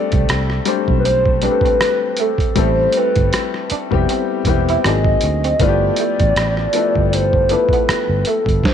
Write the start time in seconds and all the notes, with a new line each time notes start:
Already playing: G3 A3 C4 D4 A4 D5
0.12 C2, kick, closed hi-hat
0.29 C2, cross-stick, closed hi-hat
0.50 cross-stick
0.65 G3 A3 C4 D4 C5, closed hi-hat
0.88 B1, kick
0.99 B4
1.05 C5, muted clean electric guitar stroke, closed hi-hat
1.26 kick
1.42 G3 A3 C4 D4 B4, closed hi-hat
1.46 G4
1.51 A4
1.61 kick
1.65 C4, closed hi-hat
1.81 cross-stick, closed hi-hat
2.17 A3 A4, closed hi-hat
2.38 kick, closed hi-hat
2.55 A1 G3 A3 C4 E4 A4 C5, kick, closed hi-hat
2.92 closed hi-hat
2.97 C4 B4
3.16 G1, kick, closed hi-hat
3.33 cross-stick, closed hi-hat
3.54 cross-stick
3.70 D4, muted fingered electric bass stroke, closed hi-hat
3.91 F1 G3 B3 C4 E4 G4, kick
4.09 C4, closed hi-hat
4.45 E1 G3 B3 C4 E4, muted clean electric guitar stroke, kick, closed hi-hat
4.49 G4
4.69 E4, closed hi-hat
4.84 G#1 F#3 A#3 C4 D4 D#4 G#4 D#5, cross-stick, closed hi-hat
5.05 kick
5.21 D2, muted clean electric guitar stroke, closed hi-hat
5.44 C4, closed hi-hat
5.60 G1 F3 A3 B3 E4 F4 D5, kick, closed hi-hat
5.68 G4
5.96 A3, closed hi-hat
6.20 A1, kick, closed hi-hat
6.36 A1, cross-stick, closed hi-hat
6.57 cross-stick
6.73 F3 A3 B3 D4 E4 A4, closed hi-hat
6.96 G1, kick
7.13 C5, muted clean electric guitar stroke, closed hi-hat
7.33 kick
7.49 F3 A3 B3 D4 E4 A4 B4, closed hi-hat
7.69 kick
7.73 B3, closed hi-hat
7.89 muted fingered electric bass stroke, cross-stick, closed hi-hat
8.09 G1
8.25 A3 A4, closed hi-hat
8.46 G1, kick, closed hi-hat
8.64 C5, kick, snare